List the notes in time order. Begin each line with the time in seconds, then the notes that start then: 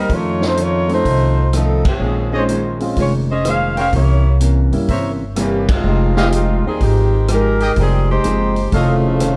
Already playing: G3 C4 A#4
0.00 D#4
0.09 F2 D#3 A3 C#4, kick, open hi-hat
0.14 A3 D#4 F4 C#5
0.41 A3 C4 C#4 D#4, snare
0.46 A3 D#4 F4 C5
0.57 F2 D#3 A3 C#4 D#4 F4 C#5, closed hi-hat
0.88 A3 C4 C#4 D#4, open hi-hat
0.93 A3 D#4 F4 C5
1.04 C2 F2 D#3 A3 C#4, kick, open hi-hat
1.53 F2 D#3 F3 A3 C4 C#4 D#4 A4, cross-stick, closed hi-hat
1.85 F2 F3 C4 C#4 G#4, kick, ride
1.99 A#1 A#2 D#3 G#3 C#4
2.32 G#3 C4 C#4 D#4 G#4 C5 C#5 D#5
2.36 G#3 F4 C5
2.49 A#2 D#3 G#3 C#4, closed hi-hat
2.80 G#3 C4 C#4 F4, open hi-hat
2.96 F1 A#2 D#3 G#3 C4 C#4 F4 C#5, kick, open hi-hat
3.31 C#4 G#4 C5 D#5
3.44 A#2 D#3 G#3 C#4 G#4 C5 F5, cross-stick, closed hi-hat
3.77 C#4 G#4 A#4 C5 C#5 F5 G5, open hi-hat
3.92 C2 C3 E3 A#3 C#4 E4 G4 C#5, kick, open hi-hat
4.40 C3 E3 A#3 C#4, closed hi-hat
4.72 G2 G3 A#3 C#4 E4, open hi-hat
4.88 G1 C3 E3 A#3 C#4 A#4 C5 C#5 E5, kick, open hi-hat
5.36 C3 E3 G3 A#3 C#4 G4, cross-stick, closed hi-hat
5.40 C#4
5.69 G#3 C4 D#4 F4, kick, ride
5.84 F1 F3 G#3 D#4 G4
6.16 G#3 C4 D#4 F4 G4 G#4 D#5 F5, snare
6.32 F3 G#3 D#4 G4, closed hi-hat
6.64 D#2 D#3 G3 C4 G#4
6.80 G#1 D#3 F3 G#3 C4 D#4 G4, kick, open hi-hat
7.28 F3 G#3 D#4 G4, cross-stick, closed hi-hat
7.32 D#4 A#4
7.60 G4 G#4 D#5 G5, open hi-hat
7.76 F1 F3 G3 G#3 D#4 G4, kick, open hi-hat
7.80 D#3 C4 G#4
8.11 G#3 D#4 G4 C5
8.24 F#1 F3 G#3 C4 D#4 G4, closed hi-hat
8.56 open hi-hat
8.72 F1 F2 A2 C#3 D#3 F3 A3 C#4 D#4 F4 A4 C#5 D#5 F5, kick, open hi-hat
9.20 F2 D#3 A3 C#4, cross-stick, closed hi-hat